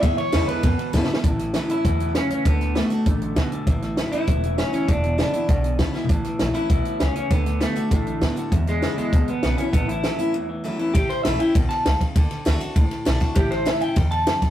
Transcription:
<<
  \new Staff \with { instrumentName = "Clean electric guitar" } { \time 4/4 \key a \major \tempo 4 = 198 e''8 cis''4 b'4. r4 | r4. e'4. cis'8 cis'8 | b4 a2 r4 | r4. e'4. cis'8 cis'8 |
d'4 d'2 r4 | r4. e'4. cis'8 cis'8 | b4 a2 r4 | r8 gis4 gis4 b8 b8 cis'8 |
b8 e'2 r4. | g'8 c''8 e''8 g''4 a''4 r8 | r1 | g'8 c''8 e''8 g''4 a''4 r8 | }
  \new Staff \with { instrumentName = "Steel-string acoustic guitar" } { \time 4/4 \key a \major << { r4 <d gis b e'>4 r4 <d gis b e'>8 <b e'>8 | r4 <e a cis' e'>8 <cis' e'>8 r2 | r4 <d a d' fis'>8 <d' fis'>8 r2 | r4 <e a cis' e'>8 <cis' e'>8 r4 <e a cis' e'>8 <cis' e'>8 |
r4 <d gis b e'>8 <b e'>8 r4 <d gis b e'>8 <b e'>8 | r4 <e a cis' e'>8 <cis' e'>8 r2 | r4 <d a d' fis'>8 <d' fis'>8 r4 <d a d' fis'>8 <d' fis'>8 | r4 <d gis b e'>4 r4 <d gis b e'>8 <b e'>8 |
r4 <e a cis' e'>8 <cis' e'>8 r4 <e a cis' e'>8 <cis' e'>8 | r4 <e a cis' e'>8 <cis' e'>8 r2 | r4 <d a d' fis'>8 <d' fis'>8 r4 <d a d' fis'>8 <d' fis'>8 | r4 <e a cis' e'>8 <cis' e'>8 r2 | } \\ { e,2 b,2 | a,2 b,4 cis4 | d2 fis,4 b,4 | a,2 e,2 |
e,2 b,2 | a,2 b,4 cis4 | d2 a,2 | e,2 b,2 |
a,2 e,2 | a,2 b,4 cis4 | d2 a,2 | a,2 gis,4 fis,4 | } >> }
  \new Staff \with { instrumentName = "Clean electric guitar" } { \clef bass \time 4/4 \key a \major <e, b,>8 <e, b,>8 <e, cis>8 <e, b,>8 <e, b,>8 <e, b,>8 <e, cis>8 <e, b,>8 | <a, e>8 <a, e>8 <a, fis>8 <a, e>8 <a, e>8 <a, e>8 <a, fis>8 <a, e>8 | <d a>8 <d a>8 <d b>8 <d a>8 <d a>8 <d a>8 <d b>8 <d a>8 | <a, e>8 <a, e>8 <a, fis>8 <a, e>8 <a, e>8 <a, e>8 <a, fis>8 <a, e>8 |
<e, b,>8 <e, b,>8 <e, cis>8 <e, b,>8 <e, b,>8 <e, b,>8 <e, cis>8 <e, b,>8 | <a, e>8 <a, e>8 <a, fis>8 <a, e>8 <a, e>8 <a, e>8 <a, fis>8 <a, e>8 | <d a>8 <d a>8 <d b>8 <d a>8 <d a>8 <d a>8 <d b>8 <d a>8 | <e, b,>8 <e, b,>8 <e, cis>8 <e, b,>8 <e, b,>8 <e, b,>8 <e, cis>8 <e, b,>8 |
<a, e>8 <a, e>8 <a, fis>8 <a, e>8 <a, e>8 <a, e>8 <a, fis>8 <a, e>8 | r1 | r1 | r1 | }
  \new Staff \with { instrumentName = "Upright bass" } { \clef bass \time 4/4 \key a \major gis,8 r8 e,8 r8 fis,8 r8 gis,8 r8 | a,,4. r8 e,4. r8 | d,4. r8 a,,4. r8 | a,,4. r8 e,,4. r8 |
e,,4. r8 b,,4. r8 | a,,8 r8 a,,8 r8 b,,8 r8 cis,8 r8 | d,4. r8 a,,4. r8 | e,4. r8 cis,8 r8 b,,8 r8 |
a,,4. r2 r8 | a,,8 r8 a,,8 r8 b,,8 r8 cis,8 r8 | d,8 r8 d,8 r8 cis,8 r8 b,,8 r8 | a,,4. r8 e,4. r8 | }
  \new DrumStaff \with { instrumentName = "Drums" } \drummode { \time 4/4 <bd cymr>8 cymr8 <cymr sn>8 cymr8 <bd cymr>8 cymr8 \tuplet 3/2 { <bd sn>8 sn8 sn8 } | <hh bd>8 <hh sn>8 <hh sn>8 hh8 <hh bd>8 hh8 <hh sn>8 hh8 | <hh bd>8 <hh sn>8 <hh sn>8 hh8 <hh bd>8 hh8 <hh bd sn>8 hh8 | <hh bd>8 <hh sn>8 <hh sn>8 hh8 <hh bd>8 hh8 <hh sn>8 hh8 |
<hh bd>8 hh8 <hh sn>8 hh8 <hh bd>8 hh8 \tuplet 3/2 { <hh bd sn>16 r16 r16 sn16 r16 tomfh16 } | <hh bd>8 <hh sn>8 <hh sn>8 hh8 <hh bd>8 hh8 <hh sn>8 hh8 | <hh bd>8 <hh sn>8 <hh sn>8 hh8 <hh bd>8 hh8 <hh bd sn>8 hh8 | <hh bd>8 <hh sn>8 <hh sn>8 hh8 <hh bd>8 hh8 <hh sn>8 hh8 |
<hh bd>8 hh8 <hh sn>8 hh8 r4 r4 | <bd cymr>8 <cymr sn>8 <cymr sn>8 cymr8 <bd cymr>8 <cymr sn>8 <cymr sn>8 <bd cymr sn>8 | <bd cymr>8 <cymr sn>8 <cymr sn>8 cymr8 <bd cymr>8 <cymr sn>8 <cymr sn>8 <bd cymr sn>8 | <bd cymr>8 <cymr sn>8 <cymr sn>8 cymr8 <bd cymr sn>8 cymr8 <cymr sn>8 <bd cymr sn>8 | }
>>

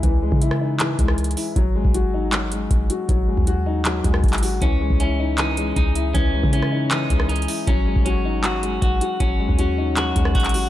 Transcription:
<<
  \new Staff \with { instrumentName = "Clean electric guitar" } { \time 4/4 \key cis \minor \tempo 4 = 157 r1 | r1 | r1 | cis'4 cis'4 dis'4 dis'4 |
cis'4 cis'4 dis'4 dis'4 | cis'4 cis'4 fis'4 fis'4 | cis'4 cis'4 fis'4 fis'4 | }
  \new Staff \with { instrumentName = "Grand piano" } { \clef bass \time 4/4 \key cis \minor <e gis e'>8 gis8 e'8 dis'8 e8 gis4 e'8 | fis8 gis8 fis'8 dis'8 fis8 gis4 fis'8 | fis8 gis8 fis'8 dis'8 fis8 gis4 fis'8 | e8 gis8 e'8 dis'8 e8 gis4 e'8 |
e8 gis8 e'8 dis'8 e8 gis4 e'8 | fis8 gis8 fis'8 dis'8 fis8 gis4 fis'8 | fis8 gis8 fis'8 dis'8 fis8 gis4 fis'8 | }
  \new Staff \with { instrumentName = "808-style bass" } { \clef bass \time 4/4 \key cis \minor cis,8. cis4.~ cis16 cis,4 r8 | gis,,8. gis,,2~ gis,,16 gis,,8 r8 | gis,,8. dis,4.~ dis,16 dis,8 gis,,4 | cis,8. cis,2~ cis,16 cis,4 |
cis,8. cis4.~ cis16 cis,4 r8 | gis,,8. gis,,2~ gis,,16 gis,,8 r8 | gis,,8. dis,4.~ dis,16 dis,8 gis,,4 | }
  \new DrumStaff \with { instrumentName = "Drums" } \drummode { \time 4/4 <hh bd>8. bd16 hh16 ss8. <hc hh>8 <hh bd>16 ss16 \tuplet 3/2 { hh16 hh16 hh16 hho16 r16 r16 } | <hh bd>8. bd16 hh4 <hc hh>8 hh8 <hh bd>8 hh8 | <hh bd>8. bd16 hh4 <hc hh>8 <hh bd>16 ss16 <hh bd>32 hh32 <hc hh>32 hh32 hho8 | <hh bd>8. bd16 hh4 <hc hh>8 hh8 <hh bd>8 hh8 |
<hh bd>8. bd16 hh16 ss8. <hc hh>8 <hh bd>16 ss16 \tuplet 3/2 { hh16 hh16 hh16 hho16 r16 r16 } | <hh bd>8. bd16 hh4 <hc hh>8 hh8 <hh bd>8 hh8 | <hh bd>8. bd16 hh4 <hc hh>8 <hh bd>16 ss16 <hh bd>32 hh32 <hc hh>32 hh32 hho8 | }
>>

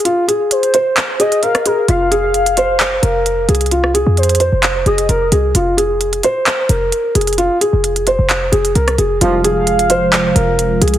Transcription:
<<
  \new Staff \with { instrumentName = "Soft synth lead" } { \time 4/4 \key f \minor \tempo 4 = 131 r4 c''4. ees''8 f''8 bes'8 | f''1 | r4 c''4. ees''8 r4 | r1 |
r1 | f''1 | }
  \new Staff \with { instrumentName = "Felt piano" } { \time 4/4 \key f \minor f'8 aes'4 c''4 aes'8 bes'8 aes'8 | f'8 aes'4 c''4 bes'4 aes'8 | f'8 aes'4 c''4 aes'8 bes'8 aes'8 | f'8 aes'4 c''4 bes'4 aes'8 |
f'8 aes'4 c''4 aes'8 bes'8 aes'8 | f'8 aes'4 c''4 bes'4 aes'8 | }
  \new Staff \with { instrumentName = "Analog synth pad" } { \clef bass \time 4/4 \key f \minor r1 | r1 | r1 | r1 |
r1 | <c f aes f'>1 | }
  \new Staff \with { instrumentName = "Brass ensemble" } { \clef bass \time 4/4 \key f \minor r1 | r1 | r1 | r1 |
r1 | <c, aes, f>8. r2. r16 | }
  \new Staff \with { instrumentName = "808-style bass" } { \clef bass \time 4/4 \key f \minor r1 | f,,2~ f,,8 f,,4 c,8~ | c,8. f,4 f,,8. f,,8 f,,8 c,8 | f,,4. r4 f,,8 r8 f,,8~ |
f,,16 r8 f,,4 f,,8. f,,8 c,8 f,,8 | f,,2~ f,,8 f,,4 c,8 | }
  \new DrumStaff \with { instrumentName = "Drums" } \drummode { \time 4/4 hh8 hh8 hh16 hh16 hh8 <hc hh>8 hh16 hh16 hh16 <hh ss>16 hh8 | hh8 hh8 hh16 hh16 hh8 <hc hh>8 hh8 hh8 hh32 hh32 hh32 hh32 | hh16 ss16 hh8 hh32 hh32 hh32 hh32 hh8 <hc hh>8 hh16 hh16 hh8 hh8 | hh8 hh8 hh16 hh16 hh8 <hc hh>8 hh8 hh8 hh32 hh32 hh32 hh32 |
hh8 hh8 hh16 hh16 hh8 <hc hh>8 hh16 hh16 hh16 <hh ss>16 hh8 | hh8 hh8 hh16 hh16 hh8 <hc hh>8 hh8 hh8 hh32 hh32 hh16 | }
>>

